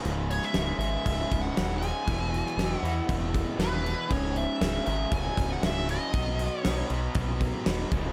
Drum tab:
CC |x-x-x-x-x-x-x-x-|x-x-x-x-x-x-x-x-|x-x-x-x-x-x-x-x-|x-x-x-x-x-x-x-x-|
SD |---oo-------o---|---oo-------o---|----o-------o---|----o-------o---|
BD |--------o-o-----|o-------o-o-----|o-------o-o-----|o-------o-o---o-|